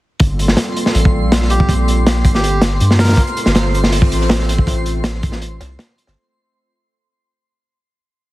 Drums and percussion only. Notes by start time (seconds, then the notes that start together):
0.20 kick, closed hi-hat
0.39 closed hi-hat
0.48 snare
0.57 snare, closed hi-hat
0.76 closed hi-hat
0.86 snare
0.95 closed hi-hat
1.05 kick
1.32 snare, closed hi-hat
1.42 snare
1.50 closed hi-hat
1.60 kick
1.69 kick, closed hi-hat
1.88 closed hi-hat
2.07 snare, closed hi-hat
2.25 kick, closed hi-hat
2.35 snare
2.44 closed hi-hat
2.61 snare, closed hi-hat
2.80 closed hi-hat
2.91 snare
2.99 snare, closed hi-hat
3.04 snare, closed hi-hat
3.09 snare, closed hi-hat
3.13 snare, closed hi-hat
3.17 kick, closed hi-hat, shaker
3.27 closed hi-hat
3.36 closed hi-hat, shaker
3.46 snare, closed hi-hat
3.55 snare, closed hi-hat, shaker
3.74 closed hi-hat, shaker
3.84 snare
3.92 closed hi-hat, open hi-hat
4.02 kick, snare
4.12 closed hi-hat, shaker
4.21 snare
4.29 snare, closed hi-hat, shaker
4.39 snare
4.48 snare, closed hi-hat, shaker
4.58 kick
4.67 kick, closed hi-hat, shaker
4.86 closed hi-hat, shaker
5.04 snare, closed hi-hat, shaker
5.23 kick, closed hi-hat, shaker
5.32 snare
5.42 closed hi-hat
5.61 snare, closed hi-hat, shaker
5.79 snare, closed hi-hat, shaker
5.98 closed hi-hat, shaker
6.07 snare, shaker